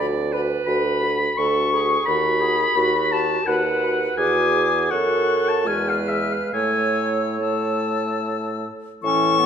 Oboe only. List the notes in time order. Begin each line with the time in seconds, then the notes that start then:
0.66 B5
1.37 C#6
2.06 B5
3.12 A5
3.47 F#5
4.17 G#5
4.90 F#5
5.48 A5
5.67 G#5
5.89 F5
6.09 E5
6.32 F5
6.53 G#5
7.40 A5
9.03 A4